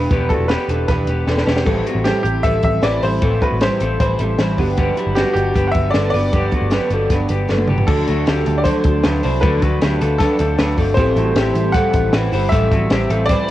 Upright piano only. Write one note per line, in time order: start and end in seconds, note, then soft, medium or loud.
0.00 0.31 B4 medium
0.29 0.50 A4 medium
0.48 0.85 B4 medium
0.88 1.43 B4 medium
2.04 2.22 G4 medium
2.23 2.44 G4 medium
2.43 2.63 E5 loud
2.64 2.84 E5 loud
2.83 3.01 D5 loud
3.03 3.43 C5 loud
3.42 3.62 B4 medium
3.62 3.98 C5 medium
4.00 4.54 C5 medium
5.15 5.32 G4 medium
5.33 5.66 G4 medium
5.67 5.73 F#5 medium
5.71 5.93 E5 loud
5.90 6.09 D5 medium
6.10 7.63 D5 loud
7.87 8.60 A4 medium
8.58 8.65 D5 medium
8.64 9.44 C5 medium
9.41 10.15 B4 medium
10.18 10.73 A4 loud
10.94 11.76 C5 loud
11.72 12.53 F#5 loud
12.49 13.24 E5 loud
13.26 13.51 D5 loud